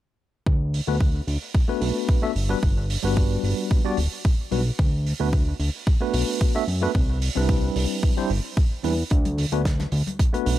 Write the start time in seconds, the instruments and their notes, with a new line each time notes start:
0.46 analog synth bass D2, kick
0.74 open hi-hat
0.87 analog synth bass D2, tine electric piano A3 B3 D4 F#4 B4
1.00 kick
1.27 analog synth bass D2, open hi-hat
1.55 kick
1.68 tine electric piano A3 B3 D4 F#4 B4
1.81 analog synth bass B1, open hi-hat
2.09 kick
2.22 tine electric piano A3 B3 D4 F#4 E5
2.35 analog synth bass G1, open hi-hat
2.49 tine electric piano G3 B3 D4 F#4 B4
2.63 analog synth bass G1, kick
2.90 open hi-hat
3.03 analog synth bass G1, tine electric piano G3 B3 D4 F#4 B4
3.17 kick
3.44 analog synth bass G1, open hi-hat
3.71 kick
3.85 tine electric piano G3 B3 D4 F#4 D5
3.97 analog synth bass D1, open hi-hat
4.25 kick
4.51 analog synth bass B1, tine electric piano G3 B3 D4 F#4 B4, open hi-hat
4.79 analog synth bass D2, kick
5.07 open hi-hat
5.20 analog synth bass D2, tine electric piano A3 B3 D4 F#4 B4
5.33 kick
5.60 analog synth bass D2, open hi-hat
5.87 kick
6.01 tine electric piano A3 B3 D4 F#4 B4
6.14 analog synth bass B1, open hi-hat
6.41 kick
6.55 tine electric piano A3 B3 D4 F#4 E5
6.68 analog synth bass F#2, open hi-hat
6.82 tine electric piano A3 B3 D4 F#4 B4
6.95 analog synth bass C2, kick
7.22 open hi-hat
7.35 analog synth bass C2, tine electric piano G3 C4 D4 E4 B4
7.49 kick
7.76 analog synth bass C2, open hi-hat
8.03 kick
8.17 tine electric piano G3 C4 D4 E4 C5
8.30 analog synth bass G1, open hi-hat
8.57 kick
8.84 analog synth bass E2, tine electric piano G3 C4 D4 E4 B4, open hi-hat
9.10 analog synth bass D2, kick, closed hi-hat
9.25 closed hi-hat, muted conga, high conga
9.38 open hi-hat, low conga
9.52 analog synth bass D2, tine electric piano A3 B3 D4 F#4 B4, closed hi-hat
9.65 kick, snare, closed hi-hat
9.79 snare, closed hi-hat, muted conga
9.92 analog synth bass D2, open hi-hat, low conga
10.07 closed hi-hat, high conga
10.19 kick, closed hi-hat, muted conga
10.33 tine electric piano A3 B3 D4 F#4 B4, closed hi-hat
10.46 analog synth bass B1, open hi-hat